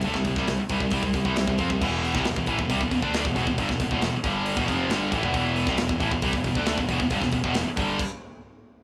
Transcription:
<<
  \new Staff \with { instrumentName = "Distorted electric guitar" } { \clef bass \time 4/4 \key e \phrygian \tempo 4 = 136 <d a>16 <c g>16 <c g>16 <c g>16 <c g>16 r16 <c g>16 <c g>16 <c g>16 <c g>16 <c g>16 <c g>16 <c g>16 <c g>16 <f c'>16 <c g>16 | <e, b, e>8. <c g>16 <e, b,>16 <e, b,>16 <a, e>16 <e, b,>16 <c g>16 <e, b,>16 <e, b,>16 <d a d'>8 <e, b,>16 <e, b,>16 <e, b,>16 | <g, d>16 <e, b,>16 <e, b,>16 <e, b,>16 <e, b,>16 r16 <g, d g>8. <e, b,>16 <f, c f>8 <g, d g>8 <a, e>16 <e, b,>16 | <e, b, e>8. <c g>16 <e, b,>16 <e, b,>16 <a, e>16 <e, b,>16 <c g>16 <e, b,>16 <e, b,>16 <d a d'>8 <e, b,>16 <e, b,>16 <e, b,>16 |
<g, d>16 <e, b,>16 <e, b,>16 <e, b,>16 <e, b,>16 r16 <g, d g>8 r2 | }
  \new Staff \with { instrumentName = "Distorted electric guitar" } { \clef bass \time 4/4 \key e \phrygian <d a>16 <c g>16 <c g>16 <c g>16 <c g>16 r16 <c g>16 <c g>16 <c g>16 <c g>16 <c g>16 <c g>16 <c g>16 <c g>16 <f c'>16 <c g>16 | <e, b, e>8. <c g>16 <e, b,>16 <e, b,>16 <a, e>16 <e, b,>16 <c g>16 <e, b,>16 <e, b,>16 <d a d'>8 <e, b,>16 <e, b,>16 <e, b,>16 | <g, d>16 <e, b,>16 <e, b,>16 <e, b,>16 <e, b,>16 r16 <g, d g>8. <e, b,>16 <f, c f>8 <g, d g>8 <a, e>16 <e, b,>16 | <e, b, e>8. <c g>16 <e, b,>16 <e, b,>16 <a, e>16 <e, b,>16 <c g>16 <e, b,>16 <e, b,>16 <d a d'>8 <e, b,>16 <e, b,>16 <e, b,>16 |
<g, d>16 <e, b,>16 <e, b,>16 <e, b,>16 <e, b,>16 r16 <g, d g>8 r2 | }
  \new Staff \with { instrumentName = "Picked electric bass" } { \clef bass \time 4/4 \key e \phrygian d,16 c,16 c,16 c,16 c,16 r16 c,16 c,16 c,16 c,16 c,16 c,16 c,16 c,16 f,16 c,16 | e,,8. c,16 e,,16 e,,16 a,,16 e,,16 c,16 e,,16 e,,16 d,8 e,,16 e,,16 e,,16 | g,,16 e,,16 e,,16 e,,16 e,,16 r16 g,,8. e,,16 f,,8 g,,8 a,,16 e,,16 | e,,8. c,16 e,,16 e,,16 a,,16 e,,16 c,16 e,,16 e,,16 d,8 e,,16 e,,16 e,,16 |
g,,16 e,,16 e,,16 e,,16 e,,16 r16 g,,8 r2 | }
  \new DrumStaff \with { instrumentName = "Drums" } \drummode { \time 4/4 <hho bd>16 <bd sn>16 <hho bd>16 <bd sn>16 <hho sn>8 <hho bd>16 bd16 <hho bd>16 bd16 <hho bd>16 bd16 <hho sn>16 bd16 <hho bd>16 bd16 | <cymc bd>8 hho16 <bd sn>16 <hho sn>16 bd16 <hho bd>16 bd16 <hho bd>16 bd16 <hho bd>16 bd16 <hho sn>16 bd16 <hho bd>16 bd16 | <hho bd>16 <bd sn>16 <hho bd>16 bd16 <hho sn>8 <hho bd>8 hho16 bd16 <hho bd>8 <hho sn>8 <hho bd>16 bd16 | <hho bd>8 hho16 <bd sn>16 <hho sn>16 bd16 <hho bd>16 bd16 <hho bd>16 bd16 <hho bd>16 bd16 <hho sn>16 bd16 <hho bd>16 bd16 |
<hho bd>16 <bd sn>16 <hho bd>16 bd16 <hho sn>8 <hho bd>8 <cymc bd>4 r4 | }
>>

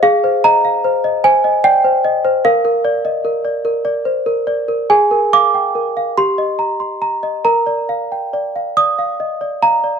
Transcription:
\new Staff \with { instrumentName = "Celesta" } { \time 6/8 \key bes \mixolydian \tempo 4. = 48 << { f''8 bes''4 aes''8 g''4 | f''2~ f''8 r8 | aes''8 d'''4 c'''4. | bes''4. ees'''4 bes''8 | } \\ { aes'16 c''16 ees''16 f''16 c''16 ees''16 c''16 ees''16 d''16 c''16 ees''16 c''16 | bes'16 bes'16 d''16 ees''16 bes'16 d''16 bes'16 d''16 c''16 bes'16 d''16 bes'16 | aes'16 bes'16 f''16 g''16 bes'16 f''16 g'16 ees''16 bes''16 c'''16 bes''16 ees''16 | bes'16 d''16 f''16 g''16 d''16 f''16 d''16 f''16 ees''16 d''16 f''16 d''16 | } >> }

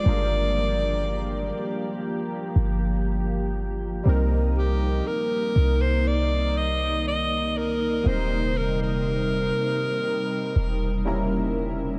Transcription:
<<
  \new Staff \with { instrumentName = "Alto saxophone" } { \time 4/4 \key c \minor \tempo 4 = 60 d''4.~ d''16 r2 r16 | r8 g'8 bes'8. c''16 d''8 ees''8 ees''8 bes'8 | c''8 bes'16 bes'2~ bes'8. r8 | }
  \new Staff \with { instrumentName = "Synth keys" } { \time 4/4 \key c \minor <g bes d' f' bes'>1 | <g bes c' ees' bes'>1 | <fis g bes c' ees' bes'>2. <g bes cis' e' bes'>4 | }
  \new Staff \with { instrumentName = "Ambient pad" } { \time 4/4 \key c \minor << { <f g'>1 | <ees ees'>1 | <c ees'>2. <cis e'>4 | } \\ { bes1 | bes1 | g1 | } >> }
  \new Staff \with { instrumentName = "808-style bass" } { \clef bass \time 4/4 \key c \minor g,,4. r4 g,,4. | c,4 r8 c,2~ c,8 | ees,,4. r4 e,,4. | }
>>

